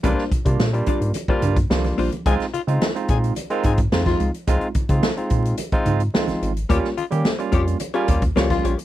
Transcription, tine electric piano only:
0.03 0.22 G3 loud
0.03 0.23 A#3 loud
0.03 0.23 D4 loud
0.03 0.23 F4 loud
0.32 0.38 D4 soft
0.32 0.39 F4 soft
0.45 0.64 G3 medium
0.45 0.64 A#3 medium
0.45 0.64 D4 medium
0.45 0.65 F4 medium
0.73 1.10 G3 loud
0.73 1.11 A#3 medium
0.73 1.11 D4 medium
0.73 1.11 F4 medium
1.28 1.57 G3 loud
1.28 1.57 A#3 loud
1.28 1.57 D4 medium
1.28 1.57 F4 loud
1.70 2.07 G3 medium
1.70 2.08 A#3 medium
1.70 2.08 D4 medium
1.70 2.08 F4 medium
2.26 2.44 G#3 loud
2.26 2.44 C4 loud
2.26 2.45 D#4 loud
2.26 2.45 F4 loud
2.67 2.86 G#3 loud
2.67 2.86 C4 medium
2.67 2.86 D#4 medium
2.67 2.87 F4 loud
2.95 3.32 G#3 medium
2.95 3.32 C4 medium
2.95 3.33 D#4 medium
2.95 3.33 F4 loud
3.50 3.78 G#3 loud
3.50 3.79 C4 loud
3.50 3.79 D#4 loud
3.50 3.79 F4 loud
3.92 4.29 G#3 loud
3.92 4.30 C4 medium
3.92 4.30 D#4 medium
3.92 4.30 F4 loud
4.48 4.66 G#3 loud
4.48 4.66 C4 medium
4.48 4.67 D#4 loud
4.48 4.67 F4 loud
4.77 4.83 F4 soft
4.89 5.08 G#3 medium
4.89 5.08 C4 medium
4.89 5.08 D#4 medium
4.89 5.08 F4 loud
5.17 5.54 G#3 loud
5.17 5.54 C4 medium
5.17 5.55 D#4 medium
5.17 5.55 F4 medium
5.72 6.00 G#3 loud
5.72 6.00 C4 loud
5.72 6.01 D#4 loud
5.72 6.01 F4 loud
6.14 6.51 G#3 medium
6.14 6.51 C4 medium
6.14 6.51 D#4 medium
6.14 6.52 F4 medium
6.69 6.88 G3 loud
6.69 6.88 A#3 loud
6.69 6.88 C#4 loud
6.69 6.89 F4 loud
6.97 7.04 C#4 soft
6.97 7.04 F4 soft
7.11 7.30 G3 medium
7.11 7.30 A#3 medium
7.11 7.30 C#4 medium
7.11 7.30 G4 loud
7.39 7.76 G3 medium
7.39 7.76 A#3 medium
7.39 7.76 C#4 medium
7.39 7.77 F4 loud
7.94 8.22 G3 loud
7.94 8.22 A#3 loud
7.94 8.23 C#4 loud
7.94 8.23 F4 loud
8.36 8.73 G3 medium
8.36 8.73 A#3 medium
8.36 8.74 C#4 medium
8.36 8.74 F4 loud

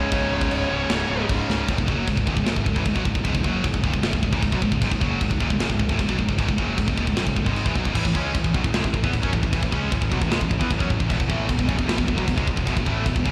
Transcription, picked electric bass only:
0.12 0.24 C#1 medium
0.32 0.44 C#1 medium
0.52 0.64 C#1 medium
0.71 0.83 C#1 medium
0.90 1.03 C#1 loud
1.10 1.22 C#1 medium
1.29 1.42 C#1 medium
1.49 1.61 C#1 medium
1.69 1.78 C#1 medium
1.79 1.87 C#1 medium
1.88 2.06 F#1 medium
2.08 2.17 C#1 medium
2.18 2.27 C#1 medium
2.27 2.36 D#1 medium
2.37 2.46 C#1 medium
2.46 2.56 F#1 medium
2.56 2.66 C#1 medium
2.67 2.75 C#1 medium
2.76 2.85 A1 loud
2.86 2.95 C#1 medium
2.96 3.05 B1 loud
3.05 3.15 C#1 medium
3.15 3.24 C#1 medium
3.25 3.34 C#1 medium
3.35 3.44 C#1 medium
3.44 3.63 F#1 loud
3.64 3.73 C#1 medium
3.74 3.83 C#1 medium
3.83 3.93 D#1 medium
3.94 4.02 C#1 medium
4.03 4.12 F#1 loud
4.14 4.22 C#1 medium
4.23 4.32 C#1 medium
4.32 4.42 A1 loud
4.42 4.52 C#1 medium
4.53 4.61 B1 loud
4.62 4.71 C#1 medium
4.72 4.81 C#1 medium
4.81 4.91 C#1 medium
4.91 5.01 C#1 medium
5.01 5.20 F#1 loud
5.21 5.30 C#1 medium
5.31 5.40 C#1 medium
5.41 5.50 D#1 medium
5.51 5.58 C#1 medium
5.59 5.69 F#1 loud
5.70 5.79 C#1 medium
5.80 5.89 C#1 medium
5.89 5.99 A1 loud
5.99 6.08 C#1 medium
6.09 6.18 B1 loud
6.19 6.28 C#1 medium
6.28 6.38 C#1 medium
6.38 6.47 C#1 medium
6.48 6.58 C#1 medium
6.58 6.77 F#1 loud
6.78 6.87 C#1 medium
6.88 6.97 C#1 medium
6.98 7.07 D#1 medium
7.08 7.16 C#1 medium
7.17 7.26 F#1 loud
7.27 7.36 C#1 medium
7.36 7.46 C#1 medium
7.46 7.64 G#1 loud
7.65 7.75 A1 medium
7.76 7.85 B1 medium
7.85 7.95 C#1 medium
7.95 8.04 A1 medium
8.05 8.14 A1 medium
8.15 8.33 C#2 medium
8.35 8.44 A1 medium
8.45 8.54 A1 medium
8.54 8.63 B1 medium
8.64 8.73 A1 medium
8.74 8.83 C#2 medium
8.84 8.93 A1 medium
8.94 9.03 A1 medium
9.04 9.13 E2 loud
9.14 9.22 A1 medium
9.23 9.32 F#2 loud
9.33 9.42 A1 medium
9.43 9.52 A1 medium
9.53 9.62 A1 medium
9.63 9.72 A1 medium
9.73 9.91 C#2 medium
9.92 10.01 A1 medium
10.02 10.11 A1 medium
10.12 10.21 B1 loud
10.21 10.30 A1 medium
10.32 10.40 C#2 loud
10.41 10.50 A1 medium
10.51 10.60 A1 medium
10.61 10.70 E2 loud
10.71 10.80 A1 medium
10.80 10.89 F#2 loud
10.90 10.99 A1 medium
11.00 11.09 A1 medium
11.11 11.19 E1 medium
11.20 11.29 E1 medium
11.29 11.47 A1 loud
11.49 11.58 E1 medium
11.59 11.68 E1 medium
11.68 11.77 F#1 medium
11.79 11.87 E1 medium
11.88 11.97 A1 loud
11.98 12.07 E1 medium
12.08 12.17 E1 medium
12.18 12.27 B1 loud
12.28 12.36 E1 medium
12.37 12.46 C#2 loud
12.47 12.56 E1 medium
12.57 12.66 E1 medium
12.67 12.76 E1 medium
12.76 12.85 E1 medium
12.86 13.04 A1 loud
13.06 13.15 E1 medium
13.16 13.25 E1 medium
13.25 13.32 F#1 medium

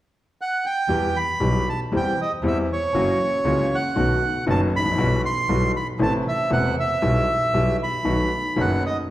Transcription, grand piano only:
0.88 1.11 E2 medium
0.88 1.11 E3 medium
0.88 1.10 G3 soft
0.88 1.11 B3 medium
0.88 1.11 G4 medium
1.40 1.62 B1 medium
1.40 1.62 B2 medium
1.40 1.62 E3 medium
1.40 1.62 G3 soft
1.40 1.62 B3 medium
1.40 1.62 G4 medium
1.92 2.14 E2 medium
1.92 2.14 E3 medium
1.92 2.13 G3 medium
1.92 2.14 C4 medium
1.92 2.14 G4 medium
2.43 2.65 E2 medium
2.43 2.65 E3 medium
2.43 2.65 G3 medium
2.43 2.65 C4 medium
2.43 2.65 G4 medium
2.94 3.16 F#2 medium
2.94 3.16 E3 medium
2.94 3.16 F#3 medium
2.94 3.16 A#3 medium
2.94 3.16 C#4 medium
2.94 3.16 F#4 medium
3.44 3.66 C#2 medium
3.44 3.66 C#3 medium
3.44 3.66 E3 medium
3.44 3.67 A#3 soft
3.44 3.66 C#4 medium
3.44 3.66 F#4 medium
3.96 4.17 B1 medium
3.96 4.17 B2 medium
3.96 4.17 D#3 medium
3.96 4.17 A3 medium
3.96 4.17 B3 medium
3.96 4.17 F#4 medium
4.46 4.68 F#1 medium
4.46 4.68 F#2 medium
4.46 4.68 D#3 medium
4.46 4.68 A3 medium
4.46 4.68 B3 medium
4.46 4.68 F#4 medium
4.79 4.85 G#1 soft
4.86 4.92 A1 soft
4.92 4.98 A#1 medium
4.98 5.19 B1 medium
4.98 5.19 B2 medium
4.98 5.19 E3 medium
4.98 5.19 G3 medium
4.98 5.19 B3 medium
4.98 5.20 F#4 medium
5.49 5.70 B1 medium
5.49 5.70 B2 medium
5.49 5.70 E3 medium
5.49 5.70 G3 medium
5.49 5.70 B3 soft
5.49 5.70 F#4 medium
5.99 6.21 A1 medium
5.99 6.21 A2 medium
5.99 6.21 C3 medium
5.99 6.21 A3 medium
5.99 6.21 B3 medium
5.99 6.21 E4 medium
6.50 6.72 E1 medium
6.50 6.72 E2 medium
6.50 6.72 C3 medium
6.50 6.72 A3 medium
6.50 6.72 B3 medium
6.50 6.72 E4 medium
7.02 7.23 B1 medium
7.02 7.24 B2 medium
7.02 7.23 E3 medium
7.02 7.23 G3 medium
7.02 7.24 B3 medium
7.02 7.23 G4 medium
7.54 7.75 B1 medium
7.54 7.75 B2 medium
7.54 7.75 E3 medium
7.54 7.75 G3 soft
7.54 7.75 B3 medium
7.54 7.76 G4 medium
8.04 8.27 B1 medium
8.04 8.27 B2 medium
8.04 8.27 D#3 medium
8.04 8.27 A3 soft
8.04 8.27 B3 soft
8.04 8.27 F#4 medium
8.56 8.79 F#1 medium
8.56 8.79 F#2 medium
8.56 8.79 D#3 medium
8.56 8.79 A3 medium
8.56 8.79 B3 soft
8.56 8.79 F#4 medium

